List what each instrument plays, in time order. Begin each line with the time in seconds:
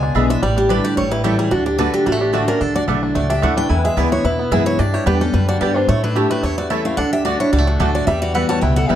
Already playing: upright bass C#2, steel-string acoustic guitar B2 G#5, five-string banjo G#3
0.03 five-string banjo D4
0.15 upright bass B1, steel-string acoustic guitar D3 G#3 B3 E4, five-string banjo G#3, mandolin D4 G#4 E5 B5
0.29 steel-string acoustic guitar B3 E4 E5, five-string banjo D4
0.43 upright bass A1, steel-string acoustic guitar A2 D5, five-string banjo G3
0.57 five-string banjo D4, steel-string acoustic guitar G4
0.69 steel-string acoustic guitar D3 G3 D4 E4 B4, mandolin A3 G4 D5 A5, five-string banjo D4
0.84 five-string banjo G4, steel-string acoustic guitar D5
0.97 upright bass A1, steel-string acoustic guitar A2 C#5, five-string banjo G3
1.11 five-string banjo E4, steel-string acoustic guitar B4
1.24 steel-string acoustic guitar E3 G3 C#4 E4 A4, mandolin A3 E4 C#5 G5, five-string banjo G4
1.39 five-string banjo G3, steel-string acoustic guitar G#4
1.51 upright bass D2, steel-string acoustic guitar D3 F#4, five-string banjo D4
1.66 five-string banjo D4, steel-string acoustic guitar G4
1.78 steel-string acoustic guitar D3 A3 D4 F#4 B4, mandolin A3 F#4 D5 A5, five-string banjo D4
1.94 five-string banjo D4, steel-string acoustic guitar G4
2.06 upright bass A1, steel-string acoustic guitar A2 F#4, five-string banjo G3, resonator guitar played with a steel bar A3
2.12 five-string banjo A3
2.21 resonator guitar played with a steel bar B3, five-string banjo D4, steel-string acoustic guitar G4
2.33 steel-string acoustic guitar D3 A3 D4 F#4 A4, mandolin A3 F#4 D5 A5, five-string banjo A3, resonator guitar played with a steel bar D4
2.48 resonator guitar played with a steel bar C#4, five-string banjo D4, steel-string acoustic guitar D4 F#4 A#4
2.61 upright bass D2, steel-string acoustic guitar D3 A4, five-string banjo D4, resonator guitar played with a steel bar D4
2.75 five-string banjo D4, resonator guitar played with a steel bar F#4, steel-string acoustic guitar D5
2.88 upright bass B1, steel-string acoustic guitar F#3 A3 D4 E4, mandolin A3 E4 D5 F#5, five-string banjo D4
3.03 five-string banjo D4
3.15 upright bass C#2, steel-string acoustic guitar A2 D5, five-string banjo A3, resonator guitar played with a steel bar F#4
3.30 five-string banjo D4, resonator guitar played with a steel bar G4, steel-string acoustic guitar E5
3.42 upright bass D2, steel-string acoustic guitar F#3 A3 D4 E4 F#5, mandolin A3 E4 D5 F#5, five-string banjo A3, resonator guitar played with a steel bar A4
3.57 five-string banjo D4, steel-string acoustic guitar D4 E4 G5, resonator guitar played with a steel bar B4
3.70 steel-string acoustic guitar E2 G#5, upright bass E2, five-string banjo E4, resonator guitar played with a steel bar B4
3.84 five-string banjo G#3, resonator guitar played with a steel bar G#4, steel-string acoustic guitar E5
3.97 upright bass D2, steel-string acoustic guitar E3 G#3 B3 E4 D5, mandolin B3 E4 B4 G#5, five-string banjo E4, resonator guitar played with a steel bar G#4
4.12 five-string banjo B3, steel-string acoustic guitar B3 E4 C#5, resonator guitar played with a steel bar E4
4.24 upright bass E2, steel-string acoustic guitar B2 B4, five-string banjo E4, resonator guitar played with a steel bar E4
4.39 five-string banjo B3
4.51 upright bass F#2, steel-string acoustic guitar E3 G#3 B3 E4 E5, mandolin B3 E4 B4 G#5, five-string banjo E4, resonator guitar played with a steel bar G#4
4.66 resonator guitar played with a steel bar E4, five-string banjo E4, steel-string acoustic guitar C#5
4.79 steel-string acoustic guitar G2 D5, upright bass G2, five-string banjo D4, resonator guitar played with a steel bar G4
4.94 resonator guitar played with a steel bar E4, five-string banjo G4, steel-string acoustic guitar C#5
5.06 upright bass E2, steel-string acoustic guitar D3 G3 B3 G4 B4, mandolin B3 G4 D5 G5, resonator guitar played with a steel bar D4, five-string banjo D4
5.21 steel-string acoustic guitar B3 G4 A4, resonator guitar played with a steel bar C#4, five-string banjo G4
5.34 upright bass F#2, steel-string acoustic guitar D3 B4, five-string banjo G3, resonator guitar played with a steel bar D4
5.49 five-string banjo D4, resonator guitar played with a steel bar F#4, steel-string acoustic guitar D5
5.61 upright bass G2, steel-string acoustic guitar D3 G3 B3 G4 D5, five-string banjo G3, mandolin B3 G4 D5 G5, resonator guitar played with a steel bar G4
5.76 five-string banjo D4, resonator guitar played with a steel bar D4, steel-string acoustic guitar C5
5.88 upright bass A2, steel-string acoustic guitar A2 C#5, five-string banjo A3, resonator guitar played with a steel bar E4
6.03 resonator guitar played with a steel bar D4, five-string banjo E4, steel-string acoustic guitar B4
6.15 steel-string acoustic guitar E3 A3 C#4 E4 G4, mandolin A3 E4 C#5 A5, resonator guitar played with a steel bar C#4, five-string banjo G4
6.30 five-string banjo A3, resonator guitar played with a steel bar D4, steel-string acoustic guitar B4
6.43 upright bass E2, steel-string acoustic guitar E2 C#5, five-string banjo E4, resonator guitar played with a steel bar E4
6.58 five-string banjo A3, resonator guitar played with a steel bar F#4, steel-string acoustic guitar D5
6.70 steel-string acoustic guitar E3 A3 C#4 E4 E5, mandolin A3 E4 C#5 A5, five-string banjo E4, resonator guitar played with a steel bar A4
6.85 five-string banjo A3, steel-string acoustic guitar C#4 E4 F5, resonator guitar played with a steel bar G4
6.97 upright bass D2, steel-string acoustic guitar D3 F#5, five-string banjo D4, resonator guitar played with a steel bar A4
7.13 resonator guitar played with a steel bar G4, steel-string acoustic guitar E5
7.25 steel-string acoustic guitar D3 A3 D4 F#4 D5, mandolin A3 F#4 D5 A5, five-string banjo D4, resonator guitar played with a steel bar F#4
7.40 five-string banjo D4, steel-string acoustic guitar D4 F#4 C#5, resonator guitar played with a steel bar E4
7.53 upright bass C#2, steel-string acoustic guitar A2 D5, five-string banjo G3, resonator guitar played with a steel bar F#4
7.58 five-string banjo A3
7.67 resonator guitar played with a steel bar A3, five-string banjo D4, steel-string acoustic guitar F#4
7.79 upright bass D2, steel-string acoustic guitar D3 A3 D4 F#4 A4, mandolin A3 F#4 D5 A5, five-string banjo A3, resonator guitar played with a steel bar D4
7.95 five-string banjo D4, resonator guitar played with a steel bar F#4, steel-string acoustic guitar D5
8.07 upright bass E2, steel-string acoustic guitar E2 E5, five-string banjo G3, resonator guitar played with a steel bar G4
8.22 resonator guitar played with a steel bar F#4, steel-string acoustic guitar D5
8.34 steel-string acoustic guitar E3 G3 B3 F#4 F#5, mandolin G3 E4 B4 E5, resonator guitar played with a steel bar B4
8.49 five-string banjo G3, resonator guitar played with a steel bar C#5, steel-string acoustic guitar A5
8.61 upright bass C#2, steel-string acoustic guitar B2 G5, five-string banjo E4, resonator guitar played with a steel bar B4
8.76 five-string banjo G3, resonator guitar played with a steel bar A4, steel-string acoustic guitar F#5
8.89 upright bass B1, steel-string acoustic guitar E3 G3 B3 F#4 E5, mandolin G3 E4 B4 E5, five-string banjo E4, resonator guitar played with a steel bar G4